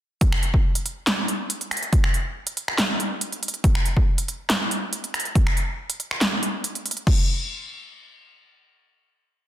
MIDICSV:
0, 0, Header, 1, 2, 480
1, 0, Start_track
1, 0, Tempo, 428571
1, 237, Time_signature, 4, 2, 24, 8
1, 10612, End_track
2, 0, Start_track
2, 0, Title_t, "Drums"
2, 237, Note_on_c, 9, 36, 119
2, 238, Note_on_c, 9, 42, 83
2, 349, Note_off_c, 9, 36, 0
2, 350, Note_off_c, 9, 42, 0
2, 364, Note_on_c, 9, 26, 81
2, 476, Note_off_c, 9, 26, 0
2, 479, Note_on_c, 9, 42, 55
2, 591, Note_off_c, 9, 42, 0
2, 603, Note_on_c, 9, 36, 64
2, 715, Note_off_c, 9, 36, 0
2, 844, Note_on_c, 9, 42, 83
2, 956, Note_off_c, 9, 42, 0
2, 959, Note_on_c, 9, 42, 56
2, 1071, Note_off_c, 9, 42, 0
2, 1199, Note_on_c, 9, 38, 118
2, 1199, Note_on_c, 9, 39, 89
2, 1199, Note_on_c, 9, 42, 80
2, 1311, Note_off_c, 9, 38, 0
2, 1311, Note_off_c, 9, 39, 0
2, 1311, Note_off_c, 9, 42, 0
2, 1438, Note_on_c, 9, 42, 57
2, 1550, Note_off_c, 9, 42, 0
2, 1679, Note_on_c, 9, 42, 83
2, 1791, Note_off_c, 9, 42, 0
2, 1804, Note_on_c, 9, 42, 39
2, 1916, Note_off_c, 9, 42, 0
2, 1918, Note_on_c, 9, 26, 55
2, 1918, Note_on_c, 9, 42, 53
2, 1981, Note_off_c, 9, 42, 0
2, 1981, Note_on_c, 9, 42, 70
2, 2030, Note_off_c, 9, 26, 0
2, 2044, Note_off_c, 9, 42, 0
2, 2044, Note_on_c, 9, 42, 39
2, 2156, Note_off_c, 9, 42, 0
2, 2157, Note_on_c, 9, 36, 126
2, 2158, Note_on_c, 9, 42, 80
2, 2269, Note_off_c, 9, 36, 0
2, 2270, Note_off_c, 9, 42, 0
2, 2284, Note_on_c, 9, 26, 78
2, 2396, Note_off_c, 9, 26, 0
2, 2398, Note_on_c, 9, 42, 51
2, 2510, Note_off_c, 9, 42, 0
2, 2763, Note_on_c, 9, 42, 81
2, 2875, Note_off_c, 9, 42, 0
2, 2878, Note_on_c, 9, 42, 55
2, 2990, Note_off_c, 9, 42, 0
2, 3004, Note_on_c, 9, 26, 59
2, 3116, Note_off_c, 9, 26, 0
2, 3118, Note_on_c, 9, 38, 121
2, 3118, Note_on_c, 9, 39, 94
2, 3118, Note_on_c, 9, 42, 77
2, 3230, Note_off_c, 9, 38, 0
2, 3230, Note_off_c, 9, 39, 0
2, 3230, Note_off_c, 9, 42, 0
2, 3359, Note_on_c, 9, 42, 54
2, 3471, Note_off_c, 9, 42, 0
2, 3598, Note_on_c, 9, 42, 81
2, 3710, Note_off_c, 9, 42, 0
2, 3724, Note_on_c, 9, 42, 38
2, 3836, Note_off_c, 9, 42, 0
2, 3838, Note_on_c, 9, 42, 52
2, 3901, Note_off_c, 9, 42, 0
2, 3901, Note_on_c, 9, 42, 67
2, 3963, Note_off_c, 9, 42, 0
2, 3963, Note_on_c, 9, 42, 37
2, 4075, Note_off_c, 9, 42, 0
2, 4077, Note_on_c, 9, 36, 123
2, 4078, Note_on_c, 9, 42, 79
2, 4189, Note_off_c, 9, 36, 0
2, 4190, Note_off_c, 9, 42, 0
2, 4203, Note_on_c, 9, 26, 77
2, 4315, Note_off_c, 9, 26, 0
2, 4318, Note_on_c, 9, 42, 51
2, 4430, Note_off_c, 9, 42, 0
2, 4442, Note_on_c, 9, 36, 66
2, 4554, Note_off_c, 9, 36, 0
2, 4683, Note_on_c, 9, 42, 77
2, 4795, Note_off_c, 9, 42, 0
2, 4798, Note_on_c, 9, 42, 53
2, 4910, Note_off_c, 9, 42, 0
2, 5038, Note_on_c, 9, 38, 126
2, 5038, Note_on_c, 9, 39, 92
2, 5038, Note_on_c, 9, 42, 78
2, 5150, Note_off_c, 9, 38, 0
2, 5150, Note_off_c, 9, 39, 0
2, 5150, Note_off_c, 9, 42, 0
2, 5278, Note_on_c, 9, 42, 53
2, 5390, Note_off_c, 9, 42, 0
2, 5518, Note_on_c, 9, 42, 78
2, 5630, Note_off_c, 9, 42, 0
2, 5644, Note_on_c, 9, 42, 37
2, 5756, Note_off_c, 9, 42, 0
2, 5758, Note_on_c, 9, 26, 53
2, 5758, Note_on_c, 9, 42, 48
2, 5821, Note_off_c, 9, 42, 0
2, 5821, Note_on_c, 9, 42, 64
2, 5870, Note_off_c, 9, 26, 0
2, 5884, Note_off_c, 9, 42, 0
2, 5884, Note_on_c, 9, 42, 36
2, 5996, Note_off_c, 9, 42, 0
2, 5997, Note_on_c, 9, 36, 126
2, 5998, Note_on_c, 9, 42, 75
2, 6109, Note_off_c, 9, 36, 0
2, 6110, Note_off_c, 9, 42, 0
2, 6123, Note_on_c, 9, 26, 78
2, 6235, Note_off_c, 9, 26, 0
2, 6238, Note_on_c, 9, 42, 50
2, 6350, Note_off_c, 9, 42, 0
2, 6604, Note_on_c, 9, 42, 79
2, 6716, Note_off_c, 9, 42, 0
2, 6718, Note_on_c, 9, 42, 52
2, 6830, Note_off_c, 9, 42, 0
2, 6844, Note_on_c, 9, 26, 62
2, 6956, Note_off_c, 9, 26, 0
2, 6958, Note_on_c, 9, 38, 127
2, 6958, Note_on_c, 9, 39, 90
2, 6958, Note_on_c, 9, 42, 77
2, 7070, Note_off_c, 9, 38, 0
2, 7070, Note_off_c, 9, 39, 0
2, 7070, Note_off_c, 9, 42, 0
2, 7199, Note_on_c, 9, 42, 52
2, 7311, Note_off_c, 9, 42, 0
2, 7439, Note_on_c, 9, 42, 76
2, 7551, Note_off_c, 9, 42, 0
2, 7564, Note_on_c, 9, 42, 37
2, 7676, Note_off_c, 9, 42, 0
2, 7679, Note_on_c, 9, 42, 49
2, 7741, Note_off_c, 9, 42, 0
2, 7741, Note_on_c, 9, 42, 64
2, 7804, Note_off_c, 9, 42, 0
2, 7804, Note_on_c, 9, 42, 37
2, 7916, Note_off_c, 9, 42, 0
2, 7917, Note_on_c, 9, 36, 112
2, 7918, Note_on_c, 9, 49, 88
2, 8029, Note_off_c, 9, 36, 0
2, 8030, Note_off_c, 9, 49, 0
2, 10612, End_track
0, 0, End_of_file